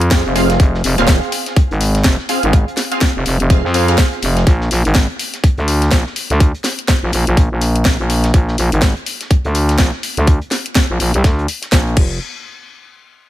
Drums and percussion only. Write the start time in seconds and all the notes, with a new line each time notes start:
0.01 closed hi-hat
0.11 kick, snare, closed hi-hat, open hi-hat
0.26 closed hi-hat
0.36 closed hi-hat, open hi-hat
0.50 snare, closed hi-hat
0.60 kick, closed hi-hat
0.74 snare
0.84 closed hi-hat, open hi-hat
0.98 closed hi-hat
1.08 kick, snare, closed hi-hat
1.23 closed hi-hat
1.32 closed hi-hat, open hi-hat
1.46 snare, closed hi-hat
1.56 kick, closed hi-hat
1.71 closed hi-hat
1.81 closed hi-hat, open hi-hat
1.95 snare, closed hi-hat
2.04 kick, snare, closed hi-hat
2.19 snare
2.29 closed hi-hat, open hi-hat
2.43 closed hi-hat
2.53 kick, closed hi-hat
2.68 closed hi-hat
2.77 snare, closed hi-hat, open hi-hat
2.92 closed hi-hat
3.01 kick, snare, closed hi-hat
3.25 closed hi-hat, open hi-hat
3.40 closed hi-hat
3.50 kick, closed hi-hat
3.74 closed hi-hat, open hi-hat
3.88 closed hi-hat
3.98 kick, snare, closed hi-hat, open hi-hat
4.13 closed hi-hat
4.22 closed hi-hat, open hi-hat
4.37 snare, closed hi-hat
4.47 kick, closed hi-hat
4.61 snare
4.71 closed hi-hat, open hi-hat
4.85 closed hi-hat
4.95 kick, snare, closed hi-hat
5.10 closed hi-hat
5.19 closed hi-hat, open hi-hat
5.34 snare, closed hi-hat
5.44 kick, closed hi-hat
5.58 closed hi-hat
5.68 closed hi-hat, open hi-hat
5.82 snare, closed hi-hat
5.91 kick, snare, closed hi-hat
6.06 snare
6.16 closed hi-hat, open hi-hat
6.30 closed hi-hat
6.40 kick, closed hi-hat
6.55 closed hi-hat
6.64 snare, closed hi-hat, open hi-hat
6.79 closed hi-hat
6.88 kick, snare, closed hi-hat
7.13 closed hi-hat, open hi-hat
7.27 closed hi-hat
7.37 kick, closed hi-hat
7.61 closed hi-hat, open hi-hat
7.76 closed hi-hat
7.85 kick, snare, closed hi-hat, open hi-hat
8.00 closed hi-hat
8.10 closed hi-hat, open hi-hat
8.24 snare, closed hi-hat
8.34 kick, closed hi-hat
8.48 snare
8.58 closed hi-hat, open hi-hat
8.72 closed hi-hat
8.82 kick, snare, closed hi-hat
8.96 closed hi-hat
9.06 closed hi-hat, open hi-hat
9.21 snare, closed hi-hat
9.30 kick, closed hi-hat
9.45 closed hi-hat
9.55 closed hi-hat, open hi-hat
9.69 snare, closed hi-hat
9.78 kick, snare, closed hi-hat
9.93 snare
10.03 closed hi-hat, open hi-hat
10.17 closed hi-hat
10.27 kick, closed hi-hat
10.42 closed hi-hat
10.51 snare, closed hi-hat, open hi-hat
10.66 closed hi-hat
10.75 kick, snare, closed hi-hat
11.00 closed hi-hat, open hi-hat
11.14 closed hi-hat
11.24 kick, snare, closed hi-hat
11.39 closed hi-hat
11.48 closed hi-hat, open hi-hat
11.62 snare, closed hi-hat
11.72 kick, snare, closed hi-hat
11.87 closed hi-hat
11.97 kick, crash